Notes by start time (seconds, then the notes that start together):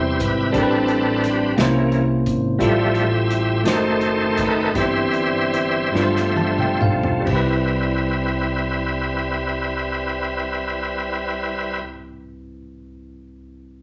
Already playing: E2 C3 G3 C4 E4 G4 B4 C5
0.20 G#1 B4, kick, closed hi-hat
0.51 A1 A2 G3 C4 D4 A4 B4, kick, closed hi-hat
0.56 D4 A#4
0.63 B4
0.88 closed hi-hat
1.24 snare, closed hi-hat
1.56 C2 C3 E3 A#3 C#4 E4, snare, closed hi-hat
1.61 C5
1.92 closed hi-hat
2.26 G#1, kick, closed hi-hat
2.59 A1 A2 F3 G3 A3 C4 E4 F4 G4 E5, kick, closed hi-hat
2.63 A4
2.95 closed hi-hat
3.31 closed hi-hat
3.64 F#1 D#3 A3 C4 D#4 F#4 A4, snare, closed hi-hat
3.68 C5
4.01 closed hi-hat
4.37 F#1 B4, kick, closed hi-hat
4.74 G1 G2 E3 G3 C4 E4 G4 E5, kick, closed hi-hat
4.78 C5
5.14 closed hi-hat
5.54 closed hi-hat
5.92 G1 G2 F3 G3 A3 C4 D4 F4, snare
5.97 B4
6.03 C5
6.16 snare
6.36 A5, high tom
6.58 G5, mid tom
6.81 B1 F5, mid tom
7.03 floor tom
7.21 G3
7.25 C2 G3 C4 E4 B4, kick, crash
7.31 E4
7.36 B4